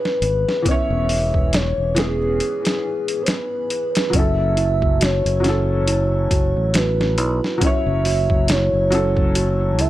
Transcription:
Already playing: felt piano E3 B3 C#4 G#4, soft synth lead B4
0.05 snare
0.22 fingered electric bass G#1, closed hi-hat
0.49 snare
0.62 felt piano E3 B3, kick, closed hi-hat
0.68 felt piano C#4 C#5, soft synth lead E5
0.90 fingered electric bass E1
1.09 open hi-hat
1.34 kick
1.53 soft synth lead C#5, snare, closed hi-hat
1.78 fingered electric bass E1
1.95 felt piano E3 B3 C#4, soft synth lead G#4, snare, closed hi-hat
1.99 felt piano G#4
2.40 closed hi-hat
2.65 snare, closed hi-hat
3.08 closed hi-hat
3.22 soft synth lead C#5
3.26 soft synth lead B4, snare, closed hi-hat
3.70 closed hi-hat
3.95 snare, closed hi-hat
4.10 fingered electric bass F#1, felt piano F#3 C#4, celesta F#4, kick, closed hi-hat
4.15 felt piano E4 A4, soft synth lead E5
4.57 celesta E4, closed hi-hat
4.82 kick
5.00 celesta F#4, soft synth lead C#5, snare, closed hi-hat
5.25 fingered electric bass F#1, closed hi-hat
5.40 felt piano F#3 C#4
5.44 felt piano E4, celesta F#4, snare, closed hi-hat
5.49 felt piano A4
5.87 celesta E4, soft synth lead C#5, closed hi-hat
6.31 fingered electric bass F#1, celesta F#4, kick, closed hi-hat
6.56 fingered electric bass A1
6.74 celesta F#4, soft synth lead B4, snare, closed hi-hat
7.01 snare
7.18 fingered electric bass B1, celesta E4, closed hi-hat
7.44 snare
7.58 felt piano F#3 C#4, kick, closed hi-hat
7.62 felt piano E4, celesta F#4, soft synth lead E5
7.67 felt piano C#5
7.86 fingered electric bass F#1
8.05 celesta F#4, open hi-hat
8.30 kick
8.48 celesta E4, soft synth lead C#5, snare, closed hi-hat
8.73 fingered electric bass F#1
8.90 felt piano F#3 C#4 E4, celesta F#4, closed hi-hat
8.95 felt piano A4
9.17 kick
9.35 celesta F#4, soft synth lead C#5, closed hi-hat
9.79 fingered electric bass C#2, celesta E4, soft synth lead E5, closed hi-hat

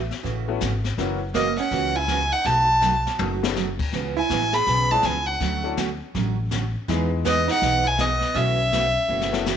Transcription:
0.11 snare
0.23 upright bass A1, steel-string acoustic guitar C#3 E3 A3 C#4 F#4, brush sweep, kick, snare
0.48 upright piano A3 B3 C#4 E4 F#4
0.61 upright bass G#1, steel-string acoustic guitar C#3 E3 A3 C#4 F#4, kick, snare, hi-hat pedal
0.84 snare
0.98 upright bass F#1, steel-string acoustic guitar C#3 E3 A#3 C#4 F#4, upright piano F#3 A#3 C#4 E4 F#4, brush sweep, kick, snare
1.34 steel-string acoustic guitar C#3 E3 A#3 C#4 F#4, hollow-body jazz guitar A#3, fiddle D#5, kick, snare, hi-hat pedal
1.57 hollow-body jazz guitar C#4, fiddle F#5, snare
1.71 upright bass C#2, steel-string acoustic guitar C#3 E3 A#3 C#4 F#4, brush sweep, kick, snare
1.96 hollow-body jazz guitar E4, fiddle G#5
2.08 steel-string acoustic guitar C#3 E3 A#3 C#4 F#4, kick, snare, hi-hat pedal
2.32 hollow-body jazz guitar D#4, fiddle F#5
2.45 upright bass B1, steel-string acoustic guitar B2 F#3 A3 D#4 F#4, hollow-body jazz guitar F#4, fiddle A5, brush sweep, kick, snare
2.81 steel-string acoustic guitar B2 F#3 A3 D#4 F#4, snare, hi-hat pedal
3.07 snare
3.18 upright bass F#1, steel-string acoustic guitar B2 F#3 A3 D#4 F#4, high tom
3.43 upright piano A3 B3 C#4 D#4 G#4, snare
3.56 steel-string acoustic guitar B2 F#3 A3 D#4 F#4, snare, hi-hat pedal
3.79 kick, crash
3.92 upright bass C#2, steel-string acoustic guitar C#3 E3 B3 C#4 G#4, brush sweep, kick, snare
4.17 hollow-body jazz guitar E4, fiddle G#5
4.30 upright bass A1, steel-string acoustic guitar C#3 E3 B3 C#4 G#4, kick, snare, hi-hat pedal
4.53 hollow-body jazz guitar G#4, fiddle B5, snare
4.66 upright bass B1, steel-string acoustic guitar C#3 E3 B3 C#4 G#4, brush sweep, kick, snare
4.91 upright piano G#3 B3 C#4 E4 G#4, hollow-body jazz guitar F#4, fiddle A5
5.03 upright bass C#2, steel-string acoustic guitar C#3 E3 B3 C#4 G#4, hollow-body jazz guitar E4, fiddle G#5, kick, snare, hi-hat pedal
5.27 hollow-body jazz guitar D4, fiddle F#5
5.40 upright bass D2, steel-string acoustic guitar D3 F#3 A3 C#4 F#4, brush sweep, kick, snare
5.64 upright piano A3 C#4 D4 E4 F#4
5.77 steel-string acoustic guitar D3 F#3 A3 C#4 F#4, kick, snare, hi-hat pedal
6.14 upright bass A1, steel-string acoustic guitar D3 F#3 A3 C#4 F#4, brush sweep, kick, snare
6.51 steel-string acoustic guitar D3 F#3 A3 C#4 F#4, kick, snare, hi-hat pedal
6.88 upright bass E2, steel-string acoustic guitar E3 G#3 B3 D#4 G#4, upright piano E3 G#3 B3 D#4 G#4, brush sweep, kick, snare
7.25 steel-string acoustic guitar E3 G#3 B3 D#4 G#4, hollow-body jazz guitar B3, fiddle D#5, kick, snare, hi-hat pedal
7.48 hollow-body jazz guitar D#4, fiddle F#5, snare
7.61 upright bass B1, steel-string acoustic guitar E3 G#3 B3 D#4 G#4, brush sweep, kick, snare
7.84 hollow-body jazz guitar E4, fiddle G#5
7.98 steel-string acoustic guitar E3 G#3 B3 D#4 G#4, hollow-body jazz guitar B3, fiddle D#5, kick, snare, hi-hat pedal
8.21 snare
8.35 upright bass B1, steel-string acoustic guitar B2 E3 A3 E4 F#4, hollow-body jazz guitar C#4, fiddle E5, brush sweep, kick, snare
8.72 steel-string acoustic guitar B2 E3 A3 E4 F#4, kick, snare, hi-hat pedal
9.09 upright bass F#1, steel-string acoustic guitar B2 E3 A3 E4 F#4
9.21 snare
9.32 upright piano A3 B3 C#4 E4 F#4, snare
9.46 steel-string acoustic guitar B2 E3 A3 E4 F#4, snare, hi-hat pedal

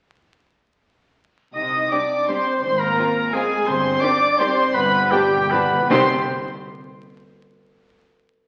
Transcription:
1.54 double bass section C2, cello section C3, french horn section D#4, oboe D#5, flute section D#5, violin section D#6
1.91 viola section G3 C4, violin section C4 G4 D6, french horn section D4, oboe D5, flute section D5
2.28 viola section G3 C4, french horn section C4, violin section C4 G4 C6, oboe C5, flute section C5
2.62 double bass section G#1, cello section G#2, french horn section C4, flute section C5, oboe C5, violin section C6
2.79 french horn section A#3, flute section A#4, oboe A#4, violin section A#5
2.97 viola section G#3 C4, violin section C4 F4
3.32 viola section G#3 C4, french horn section G#3, violin section C4 F4 G#5, oboe G#4, flute section G#4
3.66 double bass section G1, cello section G2, french horn section C4, oboe C5, flute section C5, violin section C6
4.01 viola section D#3 G3, violin section C4 G4 D6, french horn section D4, oboe D5, flute section D5
4.39 viola section D#3 G3, french horn section C4, violin section C4 G4 C6, oboe C5, flute section C5
4.74 double bass section G1, cello section G2, timpani G2, french horn section B3, oboe B4, flute section B4, violin section B5
4.82 timpani G2
4.89 timpani G2
4.96 timpani G2
5.04 timpani G2
5.11 timpani G2, viola section F3 G3, french horn section G3, violin section D4 G4 G5, oboe G4, flute section G4
5.20 timpani G2
5.28 timpani G2
5.37 timpani G2
5.45 timpani G2
5.50 timpani G2, viola section F3 G3, french horn section B3, violin section D4 G4 B5, oboe B4, flute section B4
5.62 timpani G2
5.70 timpani G2
5.79 timpani G2
5.89 double bass section C2, cello section C3, timpani C3, viola section D#3 G3, french horn section C4, violin section C4 G4 C6, flute section C5, oboe C5

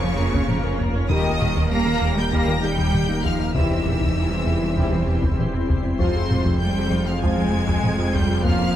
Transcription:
Already playing: detuned saw bass F1, double bass section F2, cello section C#3, synth drone A#3 C#4 F4 A#4, violin section C#5 C#6
0.03 analog synth bass F3, viola section C#4 C#5, synth pluck F4
0.18 analog synth bass F2, viola section A#3 A#4, synth pluck A#4
0.33 analog synth bass F2, synth pluck A#3, viola section C#4 C#5, taiko
0.49 analog synth bass F3, viola section A#3 A#4, taiko low-mid
0.64 analog synth bass F2, viola section C#4 C#5, synth pluck A#4
0.78 analog synth bass F2, synth pluck A#3, viola section A#3 A#4, taiko
0.94 analog synth bass F2, viola section C#4 C#5, synth pluck A#4
1.09 detuned saw bass D#1, double bass section D#2, analog synth bass D#2, synth pluck D#3, trombone section D#3 G3, cello section D#3, viola section G3 G4, french horn section A#3 G4, synth drone D#4 G4, violin section D#5 D#6, taiko
1.25 analog synth bass D#2, viola section A#3 A#4
1.40 analog synth bass D#2, viola section G3 G4, synth pluck D#4, taiko low-mid
1.56 analog synth bass D#2, synth pluck D#3, viola section A#3 A#4, taiko
1.71 analog synth bass D#2, viola section G3 G4, synth pluck G3, cello section A#3, violin section A#5 A#6
1.86 analog synth bass D#3, viola section A#3 A#4, synth pluck A#3
2.02 analog synth bass D#2, synth pluck D#3, viola section G3 G4
2.17 analog synth bass D#3, cello section G3, synth pluck A#3, viola section A#3 A#4, violin section G5 G6
2.32 analog synth bass D#2, synth pluck D#3, trombone section D#3 G3, viola section G3 G4, cello section A#3, french horn section A#3 G4, violin section A#5 A#6, taiko
2.48 analog synth bass D#3, viola section A#3 A#4, synth pluck A#3
2.63 analog synth bass D#2, viola section G3 G4, cello section G3, synth pluck D#4, violin section G5 G6
2.78 analog synth bass D#2, synth pluck D#3, viola section A#3 A#4, taiko
2.93 analog synth bass D#3, viola section G3 G4, taiko low-mid
3.08 analog synth bass D#2, viola section A#3 A#4, synth pluck D#4
3.24 analog synth bass D#2, synth pluck D#3, cello section F3, viola section G3 G4, violin section F5 F6, taiko
3.40 analog synth bass D#2, viola section A#3 A#4, synth pluck D#4
3.54 detuned saw bass E1, double bass section E2, analog synth bass E2, synth pluck C3, trombone section C3 G3, cello section E3, synth drone G3 C4 E4 C5, french horn section C4 E4, viola section E4 G4, violin section E5 E6, taiko
3.71 analog synth bass E2, viola section C4 E4
3.85 analog synth bass E2, synth pluck C4, viola section E4 G4, taiko low-mid
4.00 analog synth bass E2, synth pluck C3, viola section C4 E4, taiko
4.16 analog synth bass E2, synth pluck E3, viola section E4 G4
4.31 analog synth bass E3, synth pluck G3, viola section C4 E4
4.46 analog synth bass E2, synth pluck C3, viola section E4 G4
4.61 analog synth bass E3, synth pluck G3, viola section C4 E4
4.77 analog synth bass E2, synth pluck C3, trombone section C3 G3, french horn section C4 E4, viola section E4 G4, taiko
4.92 analog synth bass E3, synth pluck G3, viola section C4 E4
5.07 analog synth bass E2, synth pluck C4, viola section E4 G4
5.22 analog synth bass E2, synth pluck C3, viola section C4 E4, taiko
5.38 analog synth bass E3, viola section E4 G4, taiko low-mid
5.53 analog synth bass E2, synth pluck C4, viola section C4 E4
5.68 analog synth bass E2, synth pluck C3, viola section E4 G4, taiko
5.83 analog synth bass E2, synth pluck C4, viola section C4 E4
5.99 detuned saw bass F1, double bass section F2, analog synth bass F2, trombone section C3 F3, cello section C3, synth drone F3 F4, synth pluck F3, viola section G#3 F4, french horn section C4 F4, violin section C5 C6, taiko
6.16 analog synth bass F2, viola section C4 G#4
6.30 analog synth bass F2, viola section G#3 F4, synth pluck F4, taiko low-mid
6.45 analog synth bass F2, synth pluck F3, viola section C4 G#4, taiko
6.60 analog synth bass F2, cello section G3, synth pluck G#3, viola section G#3 F4, violin section G5 G6
6.76 analog synth bass F3, synth pluck C4, viola section C4 G#4
6.91 analog synth bass F2, synth pluck F3, viola section G#3 F4
7.06 analog synth bass F3, cello section F3, synth pluck C4, viola section C4 G#4, violin section F5 F6
7.21 analog synth bass F2, trombone section C3 F3, synth pluck F3, cello section G#3, viola section G#3 F4, french horn section C4 F4, violin section G#5 G#6, taiko
7.37 analog synth bass F3, synth pluck C4, viola section C4 G#4
7.52 analog synth bass F2, viola section G#3 F4, synth pluck F4
7.67 analog synth bass F2, synth pluck F3, viola section C4 G#4, taiko
7.83 analog synth bass F3, viola section G#3 F4, taiko low-mid
7.98 analog synth bass F2, viola section C4 G#4, synth pluck F4
8.13 analog synth bass F2, synth pluck F3, cello section G3, viola section G#3 F4, violin section G5 G6, taiko
8.28 analog synth bass F2, viola section C4 G#4, synth pluck F4
8.43 analog synth bass F2, trombone section C#3 F3, synth drone C#3 A#4, cello section F3, synth pluck A#3, french horn section A#3 F4, viola section C#4 F4, violin section F5 F6, taiko
8.60 analog synth bass F2, viola section A#3 C#4

